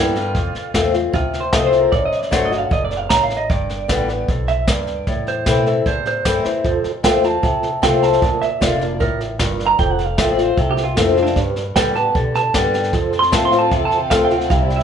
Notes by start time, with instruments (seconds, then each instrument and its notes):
Already playing: upright bass G2, steel-string acoustic guitar D3 G3 B3 G4, clean electric guitar E4
0.16 clean electric guitar F4, snare
0.35 steel-string acoustic guitar F2, upright bass F2, kick, snare
0.55 muted upright bass stroke, snare
0.74 upright bass E2, steel-string acoustic guitar F3 A3 C4 F4, kick, snare, hi-hat pedal
0.93 steel-string acoustic guitar C4 F4, snare
1.13 upright bass D2, steel-string acoustic guitar C3, clean electric guitar F4, kick, snare
1.33 snare
1.40 clean electric guitar C5
1.53 upright bass C2, steel-string acoustic guitar F3 A3 C4 F4, clean electric guitar D#5, kick, snare, hi-hat pedal
1.66 clean electric guitar C5
1.73 snare
1.80 clean electric guitar A#4
1.92 upright bass A1, steel-string acoustic guitar F#2, clean electric guitar D5, kick, snare
2.05 clean electric guitar D#5
2.12 muted upright bass stroke, snare
2.19 clean electric guitar D5, snare
2.31 upright bass G1, steel-string acoustic guitar F#3 A3 D4 F#4, clean electric guitar C5, kick, snare, hi-hat pedal
2.45 clean electric guitar D#5
2.51 steel-string acoustic guitar D4 F#4, snare
2.58 clean electric guitar F5
2.71 upright bass F#1, steel-string acoustic guitar E2, clean electric guitar D#5, kick, snare
2.85 clean electric guitar D5
2.91 snare
2.97 clean electric guitar F5
3.09 upright bass A1, steel-string acoustic guitar F#2, clean electric guitar A#5, kick, snare, hi-hat pedal
3.23 clean electric guitar F5
3.30 snare
3.37 clean electric guitar D#5
3.50 upright bass G1, steel-string acoustic guitar G2, clean electric guitar D5, kick, snare
3.70 snare
3.88 upright bass A1, steel-string acoustic guitar D3 G3 B3 G4, kick, snare, hi-hat pedal
4.08 steel-string acoustic guitar B3 G4, snare
4.28 upright bass B1, steel-string acoustic guitar F2, kick, snare
4.48 clean electric guitar E5, snare
4.68 upright bass D2, steel-string acoustic guitar G2, clean electric guitar D5, kick, snare, hi-hat pedal
4.87 snare
5.07 upright bass E2, steel-string acoustic guitar A2, kick, snare
5.27 clean electric guitar C5, snare
5.46 upright bass B2, steel-string acoustic guitar E3 A3 C4 E4, kick, snare, hi-hat pedal
5.66 steel-string acoustic guitar C4 E4, clean electric guitar A4, snare
5.86 steel-string acoustic guitar E2, upright bass A2, clean electric guitar C5, kick, snare
6.05 clean electric guitar C5, snare
6.25 upright bass G2, steel-string acoustic guitar E3 A3 C4 E4, kick, snare, hi-hat pedal
6.45 steel-string acoustic guitar C4 E4, muted upright bass stroke, snare
6.64 upright bass F2, steel-string acoustic guitar F2, tonewheel organ F4 A4 C5, kick, snare
6.84 muted upright bass stroke, snare
7.03 upright bass E2, steel-string acoustic guitar F3 A3 C4 F4, tonewheel organ F4 A4 C5, clean electric guitar G5, kick, snare, hi-hat pedal
7.23 steel-string acoustic guitar C4 F4, tonewheel organ F4 A4 C5, clean electric guitar A5, snare
7.43 upright bass D2, steel-string acoustic guitar C3, tonewheel organ F4 A4 C5, kick, snare
7.63 snare
7.82 upright bass C2, steel-string acoustic guitar F3 A3 C4 F4, tonewheel organ F4 A4 C5, clean electric guitar G5, kick, snare, hi-hat pedal
8.03 clean electric guitar A5, snare
8.13 snare
8.21 upright bass A#1, steel-string acoustic guitar A#2, tonewheel organ F4 A#4 D5, kick, snare
8.42 clean electric guitar E5, muted upright bass stroke, snare
8.60 upright bass F1, steel-string acoustic guitar D3 A#3 D4 F4, tonewheel organ F4 A#4 D5, kick, snare, hi-hat pedal
8.80 steel-string acoustic guitar D4 F4, tonewheel organ F4 A#4 D5, clean electric guitar D5, snare
9.00 upright bass A1, steel-string acoustic guitar A2, tonewheel organ F4 A#4 D5, clean electric guitar A#4, kick, snare
9.21 snare
9.39 upright bass G1, steel-string acoustic guitar G2, tonewheel organ F4 A#4 D5, kick, snare, hi-hat pedal
9.60 snare
9.66 clean electric guitar A#5
9.79 upright bass F1, steel-string acoustic guitar F2, tonewheel organ F4 A4 C5, clean electric guitar G5, kick, snare
9.91 clean electric guitar F#5
9.99 snare
10.05 clean electric guitar F5
10.17 upright bass A1, steel-string acoustic guitar F3 A3 C4 F4, tonewheel organ F4 A4 C5, clean electric guitar E5, kick, snare, hi-hat pedal
10.30 clean electric guitar D5
10.37 steel-string acoustic guitar C4 F4, tonewheel organ F4 A4 C5, snare
10.44 clean electric guitar C5
10.56 upright bass C2, steel-string acoustic guitar C3, tonewheel organ F4 A4 C5, clean electric guitar A4, kick, snare
10.71 clean electric guitar G4
10.77 snare
10.84 clean electric guitar F4
10.95 upright bass F2, steel-string acoustic guitar F3 A3 C4 F4, clean electric guitar E4, tonewheel organ F4 A4 C5, kick, snare, hi-hat pedal
11.10 clean electric guitar D4
11.17 steel-string acoustic guitar C4 F4, snare
11.23 clean electric guitar D4, snare
11.36 upright bass G2, steel-string acoustic guitar G2, tonewheel organ G4 B4 D5, kick, snare
11.56 snare
11.75 upright bass A2, steel-string acoustic guitar D3 G3 B3 G4, tonewheel organ G4 B4 D5, clean electric guitar G5, kick, snare, hi-hat pedal
11.95 steel-string acoustic guitar B3 G4, tonewheel organ G4 B4 D5, clean electric guitar A5, snare
12.15 upright bass B2, steel-string acoustic guitar D3, tonewheel organ G4 B4 D5, kick, snare
12.35 clean electric guitar A5, snare
12.53 upright bass G2, steel-string acoustic guitar D3 G3 B3 G4, tonewheel organ G4 B4 D5, clean electric guitar G5, kick, snare, hi-hat pedal
12.74 snare
12.83 snare
12.93 upright bass F2, steel-string acoustic guitar F2, string section C4 F4 A4, tonewheel organ F4 A4 C5, kick, snare
13.13 snare
13.19 clean electric guitar C6, snare
13.32 upright bass A2, steel-string acoustic guitar F3 A3 C4 F4, tonewheel organ F4 A4 C5, clean electric guitar A5, kick, snare, hi-hat pedal
13.45 clean electric guitar C6
13.52 steel-string acoustic guitar C4 F4, tonewheel organ F4 A4 C5, snare
13.59 clean electric guitar A5
13.71 upright bass E2, steel-string acoustic guitar C3, tonewheel organ F4 A4 C5, clean electric guitar G5, kick, snare
13.85 clean electric guitar A5
13.91 snare
13.98 clean electric guitar G5
14.10 upright bass D2, steel-string acoustic guitar F3 A3 C4 F4, tonewheel organ F4 A4 C5, clean electric guitar F5, kick, snare, hi-hat pedal
14.25 clean electric guitar G5
14.30 steel-string acoustic guitar C4 F4, snare
14.38 clean electric guitar F#5, snare
14.50 upright bass C2, steel-string acoustic guitar C3, string section G3 C4 E4, tonewheel organ E4 G4 C5, clean electric guitar F5, kick, snare
14.63 clean electric guitar D5
14.70 snare
14.76 clean electric guitar E5, snare